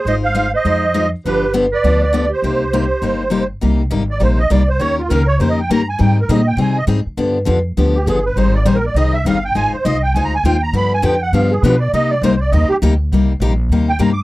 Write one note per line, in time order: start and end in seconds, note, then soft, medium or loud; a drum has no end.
0.05 0.53 G#1 medium
0.05 0.26 G#3 medium
0.05 0.26 D#4 medium
0.05 0.26 F4 medium
0.05 0.26 C5 medium
0.05 0.15 C5 medium
0.05 0.15 D#5 loud
0.23 0.51 C5 medium
0.23 0.51 F5 loud
0.35 0.46 G#3 medium
0.35 0.46 D#4 medium
0.35 0.46 F4 medium
0.35 0.46 C5 medium
0.54 1.09 C5 medium
0.54 1.10 D#5 loud
0.65 1.12 F2 medium
0.65 0.84 G#3 medium
0.65 0.85 D#4 medium
0.65 0.85 F4 medium
0.65 0.85 C5 medium
0.94 1.05 G#3 medium
0.94 1.05 D#4 medium
0.94 1.06 F4 medium
0.94 1.06 C5 medium
1.25 1.73 G1 medium
1.25 1.45 D3 medium
1.25 1.45 F3 medium
1.25 1.45 B3 medium
1.25 1.45 D4 medium
1.25 1.53 G4 medium
1.25 1.45 G4 medium
1.25 1.53 B4 medium
1.54 1.65 D3 medium
1.54 1.65 F3 medium
1.54 1.65 B3 loud
1.54 1.65 D4 loud
1.54 1.65 G4 loud
1.72 1.99 B4 medium
1.72 2.02 D5 loud
1.84 2.31 D2 medium
1.84 2.03 D3 medium
1.84 2.04 F3 medium
1.84 2.04 B3 medium
1.84 2.04 D4 medium
1.84 2.04 G4 medium
2.01 2.28 B4 medium
2.01 2.30 D5 loud
2.13 2.24 D3 medium
2.13 2.24 F3 medium
2.13 2.25 B3 medium
2.13 2.25 D4 medium
2.13 2.25 G4 medium
2.29 3.45 G4 medium
2.33 3.47 C5 medium
2.42 2.90 C2 medium
2.42 2.63 C3 medium
2.42 2.63 G3 medium
2.42 2.63 A#3 medium
2.42 2.63 D#4 medium
2.42 2.63 G4 medium
2.73 2.84 C3 medium
2.73 2.84 G3 medium
2.73 2.84 A#3 medium
2.73 2.84 D#4 medium
2.73 2.84 G4 loud
3.02 3.50 G1 medium
3.02 3.22 C3 medium
3.02 3.22 G3 medium
3.02 3.23 A#3 medium
3.02 3.22 D#4 medium
3.02 3.23 G4 medium
3.30 3.42 C3 medium
3.30 3.43 G3 medium
3.30 3.42 A#3 medium
3.30 3.43 D#4 medium
3.30 3.43 G4 loud
3.61 3.91 C2 medium
3.61 3.81 C3 medium
3.61 3.81 G3 medium
3.61 3.82 A#3 medium
3.61 3.82 D#4 medium
3.61 3.82 G4 medium
3.91 4.20 G#1 loud
3.91 4.02 C3 medium
3.91 4.02 G3 medium
3.91 4.02 A#3 medium
3.91 4.02 D#4 loud
3.91 4.02 G4 loud
4.10 4.22 D5 medium
4.20 4.50 A#1 medium
4.20 4.40 C3 medium
4.20 4.40 G3 medium
4.20 4.41 A#3 medium
4.20 4.40 D#4 medium
4.20 4.41 G4 medium
4.20 4.39 C5 medium
4.39 4.51 D#5 loud
4.50 4.79 C2 medium
4.50 4.61 C3 medium
4.50 4.62 G3 medium
4.50 4.61 A#3 medium
4.50 4.62 D#4 loud
4.50 4.62 G4 medium
4.50 4.69 D5 medium
4.69 4.80 C5 medium
4.80 5.09 D#2 medium
4.80 5.00 D#3 medium
4.80 5.00 A#3 medium
4.80 5.00 C#4 medium
4.80 5.00 G4 medium
4.80 5.01 A#4 medium
4.80 4.97 C#5 loud
4.99 5.10 F4 medium
5.09 5.39 C#2 medium
5.09 5.21 D#3 medium
5.09 5.21 A#3 loud
5.09 5.22 C#4 loud
5.09 5.21 G4 medium
5.09 5.27 A#4 medium
5.09 5.22 A#4 loud
5.27 5.39 C#5 loud
5.39 5.68 F2 medium
5.39 5.60 D#3 medium
5.39 5.60 A#3 medium
5.39 5.60 C#4 medium
5.39 5.60 G4 medium
5.39 5.60 A#4 medium
5.39 5.49 C5 medium
5.49 5.59 D#5 medium
5.60 5.70 G5 medium
5.70 5.99 G2 medium
5.70 5.81 D#3 medium
5.70 5.81 A#3 medium
5.70 5.81 C#4 loud
5.70 5.81 G4 medium
5.70 5.81 A#4 medium
5.70 5.87 A#5 loud
5.89 6.00 G#5 medium
5.99 6.28 G#2 medium
5.99 6.19 D#3 medium
5.99 6.18 G3 medium
5.99 6.19 C4 medium
5.99 6.19 D#4 medium
5.99 6.19 G#4 medium
5.99 6.17 G5 medium
6.21 6.31 A#4 medium
6.29 6.56 A#2 loud
6.29 6.40 D#3 loud
6.29 6.40 G3 medium
6.29 6.41 C4 loud
6.29 6.40 D#4 loud
6.29 6.40 G#4 loud
6.29 6.47 D#5 medium
6.48 6.59 G5 loud
6.57 6.87 C3 medium
6.57 6.77 D#3 medium
6.57 6.78 G3 medium
6.57 6.78 C4 medium
6.57 6.78 D#4 medium
6.57 6.78 G#4 medium
6.62 6.77 G#5 medium
6.78 6.85 D#5 loud
6.87 7.04 G#2 medium
6.87 6.98 D#3 medium
6.87 6.99 G3 medium
6.87 6.99 C4 medium
6.87 6.99 D#4 medium
6.87 6.99 G#4 medium
7.06 muted upright bass stroke soft
7.17 7.46 G2 medium
7.17 7.37 D3 medium
7.17 7.37 F3 medium
7.17 7.37 B3 medium
7.17 7.37 D4 medium
7.17 7.38 G4 medium
7.45 7.77 F2 medium
7.45 7.57 D3 medium
7.45 7.58 F3 medium
7.45 7.58 B3 medium
7.45 7.58 D4 medium
7.45 7.58 G4 medium
7.77 8.06 D2 medium
7.77 7.97 D3 medium
7.77 7.97 F3 medium
7.77 7.97 B3 medium
7.77 7.97 D4 medium
7.77 7.97 G4 medium
7.95 8.07 G4 medium
8.06 8.35 G1 medium
8.06 8.18 D3 medium
8.06 8.18 F3 medium
8.06 8.18 B3 medium
8.06 8.18 D4 medium
8.06 8.18 G4 medium
8.06 8.25 G#4 medium
8.25 8.37 B4 medium
8.36 8.65 G#1 medium
8.36 8.56 D#3 medium
8.36 8.56 G3 medium
8.36 8.57 C4 medium
8.36 8.57 D#4 medium
8.36 8.57 G#4 medium
8.36 8.54 C5 medium
8.55 8.66 D5 loud
8.65 8.94 A#1 medium
8.65 8.77 D#3 medium
8.65 8.77 G3 loud
8.65 8.77 C4 medium
8.65 8.77 D#4 medium
8.65 8.77 G#4 loud
8.65 8.76 C5 medium
8.75 8.85 A#4 medium
8.86 8.96 D5 medium
8.94 9.24 C2 medium
8.94 9.16 D#3 medium
8.94 9.16 G3 medium
8.94 9.16 C4 medium
8.94 9.16 D#4 medium
8.94 9.16 G#4 medium
8.94 9.13 D#5 medium
9.13 9.25 E5 loud
9.25 9.54 G1 medium
9.25 9.37 D#3 medium
9.25 9.37 G3 medium
9.25 9.37 C4 medium
9.25 9.37 D#4 loud
9.25 9.37 G#4 medium
9.25 9.44 F5 medium
9.45 9.56 G5 loud
9.55 9.72 G#1 medium
9.55 9.75 G#3 medium
9.55 9.75 D#4 medium
9.55 9.76 F4 medium
9.55 9.76 C5 medium
9.55 9.73 G#5 loud
9.73 9.85 C5 medium
9.73 muted upright bass stroke soft
9.85 10.14 C2 loud
9.85 9.96 G#3 medium
9.85 9.96 D#4 medium
9.85 9.96 F4 medium
9.85 9.96 C5 loud
9.85 10.02 D#5 medium
10.03 10.14 G5 loud
10.15 10.43 D2 medium
10.15 10.35 G#3 medium
10.15 10.35 D#4 medium
10.15 10.35 F4 medium
10.15 10.35 C5 medium
10.15 10.24 G#5 medium
10.25 10.34 A#5 loud
10.35 10.44 G#5 loud
10.44 10.72 D#2 medium
10.44 10.55 G#3 medium
10.44 10.56 D#4 medium
10.44 10.56 F4 medium
10.44 10.56 C5 loud
10.44 10.62 G5 medium
10.63 10.74 A#5 loud
10.73 11.02 G2 medium
10.73 10.93 D3 medium
10.73 10.93 F3 medium
10.73 10.94 B3 medium
10.73 10.94 D4 medium
10.73 10.94 G4 medium
10.73 10.93 B5 loud
10.94 11.05 G#5 loud
11.02 11.32 F2 loud
11.02 11.14 D3 medium
11.02 11.14 F3 medium
11.02 11.14 B3 loud
11.02 11.14 D4 medium
11.02 11.14 G4 loud
11.02 11.22 G5 medium
11.22 11.33 F#5 loud
11.33 11.62 G2 medium
11.33 11.53 D3 medium
11.33 11.53 F3 medium
11.33 11.53 B3 medium
11.33 11.53 D4 medium
11.33 11.53 G4 medium
11.33 11.50 F5 medium
11.51 11.63 G#4 medium
11.62 11.92 B2 loud
11.62 11.74 D3 medium
11.62 11.75 F3 loud
11.62 11.74 B3 medium
11.62 11.75 D4 loud
11.62 11.75 G4 loud
11.62 11.79 B4 medium
11.79 11.92 D5 medium
11.93 12.21 C3 medium
11.93 12.13 C3 medium
11.93 12.13 G3 medium
11.93 12.13 A#3 medium
11.93 12.13 D#4 medium
11.93 12.13 G4 medium
11.93 12.10 D#5 loud
12.10 12.22 D5 loud
12.22 12.51 C2 loud
12.22 12.34 C3 medium
12.22 12.34 G3 medium
12.22 12.34 A#3 loud
12.22 12.34 D#4 loud
12.22 12.34 G4 loud
12.22 12.40 C5 medium
12.40 12.52 D5 medium
12.51 12.69 D#2 loud
12.51 12.72 C3 medium
12.51 12.72 G3 medium
12.51 12.72 A#3 medium
12.51 12.72 D#4 medium
12.51 12.72 G4 medium
12.51 12.69 D#5 medium
12.69 12.77 G4 loud
12.69 muted upright bass stroke soft
12.82 13.11 D2 medium
12.82 12.93 C3 loud
12.82 12.93 G3 loud
12.82 12.93 A#3 medium
12.82 12.93 D#4 medium
12.82 12.93 G4 loud
13.12 13.39 C2 medium
13.12 13.31 C3 medium
13.12 13.32 G3 medium
13.12 13.32 A#3 medium
13.12 13.32 D#4 medium
13.12 13.32 G4 medium
13.40 13.69 A#1 medium
13.40 13.52 C3 medium
13.40 13.52 G3 medium
13.40 13.52 A#3 medium
13.40 13.52 D#4 medium
13.40 13.52 G4 loud
13.69 13.99 D#2 medium
13.69 13.91 C3 medium
13.69 13.91 G3 medium
13.69 13.91 A#3 medium
13.69 13.91 D#4 medium
13.69 13.91 G4 medium
13.89 14.00 G5 loud
13.99 14.23 G2 medium
13.99 14.11 C3 medium
13.99 14.10 G3 medium
13.99 14.11 A#3 medium
13.99 14.11 D#4 medium
13.99 14.11 G4 medium
13.99 14.10 A#5 medium
14.12 14.21 D6 medium